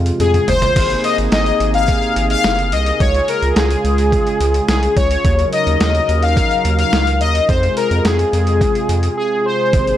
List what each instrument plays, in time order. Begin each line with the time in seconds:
Already playing: analog synth bass F2, analog synth pad C3 F3 G#3 F4
0.06 closed hi-hat
0.20 analog synth bass F2, analog polysynth G#4, closed hi-hat, high tom
0.34 closed hi-hat, mid tom
0.48 analog synth bass F#1, analog polysynth C5, closed hi-hat, mid tom
0.62 closed hi-hat, floor tom
0.76 analog synth bass G#1, analog synth pad C3 A#3 D#4 G#4, kick, closed hi-hat, crash
0.90 closed hi-hat
1.04 analog polysynth D#5, closed hi-hat
1.18 analog synth bass G#1, closed hi-hat
1.32 analog synth bass G#1, analog polysynth D#5, snare, closed hi-hat
1.46 closed hi-hat
1.60 analog synth bass G#1, closed hi-hat
1.74 analog polysynth F5, closed hi-hat
1.88 kick, closed hi-hat
2.02 closed hi-hat
2.16 analog synth bass G#1, closed hi-hat
2.30 analog polysynth F5, closed hi-hat
2.44 analog synth bass F#1, snare, closed hi-hat
2.59 closed hi-hat
2.72 analog synth bass C2, analog polysynth D#5, closed hi-hat
2.86 closed hi-hat
3.00 analog synth bass C#2, analog synth pad C#3 G#3 F4 G#4, analog polysynth C#5, kick, closed hi-hat
3.15 closed hi-hat
3.28 analog polysynth A#4, closed hi-hat
3.42 analog synth bass C#2, closed hi-hat
3.56 analog synth bass C#2, analog polysynth G#4, snare, closed hi-hat
3.71 closed hi-hat
3.84 analog synth bass C#2, closed hi-hat
3.98 closed hi-hat
4.12 kick, closed hi-hat
4.27 closed hi-hat
4.40 analog synth bass C#2, closed hi-hat
4.54 closed hi-hat
4.68 analog synth bass C2, analog polysynth G#4, snare, closed hi-hat
4.83 closed hi-hat
4.97 analog synth bass C#2, analog polysynth C#5, kick, closed hi-hat
5.11 closed hi-hat
5.25 analog synth bass D#2, analog synth pad F#3 D#4 A#4, kick, closed hi-hat
5.39 closed hi-hat
5.53 analog polysynth D#5, closed hi-hat
5.67 analog synth bass D#2, closed hi-hat
5.80 analog synth bass D#2, analog polysynth D#5, snare, closed hi-hat
5.95 closed hi-hat
6.09 analog synth bass D#2, closed hi-hat
6.23 analog polysynth F5, closed hi-hat
6.37 kick, closed hi-hat
6.51 closed hi-hat
6.65 analog synth bass D#2, closed hi-hat
6.79 analog polysynth F5, closed hi-hat
6.93 analog synth bass C#2, snare, closed hi-hat
7.07 closed hi-hat
7.21 analog synth bass D#2, analog polysynth D#5, closed hi-hat
7.35 closed hi-hat
7.49 analog synth bass F2, analog synth pad C3 G#3 F4 G#4, analog polysynth C5, kick, closed hi-hat
7.63 closed hi-hat
7.77 analog polysynth A#4, closed hi-hat
7.91 analog synth bass F2, closed hi-hat
8.05 analog synth bass F2, analog polysynth G#4, snare, closed hi-hat
8.19 closed hi-hat
8.33 analog synth bass F2, closed hi-hat
8.47 closed hi-hat
8.61 kick, closed hi-hat
8.75 closed hi-hat
8.89 analog synth bass F2, closed hi-hat
9.03 closed hi-hat
9.17 analog polysynth G#4
9.45 analog polysynth C5
9.73 analog synth bass G#1, analog synth pad A#3 D#4, kick, closed hi-hat
9.87 closed hi-hat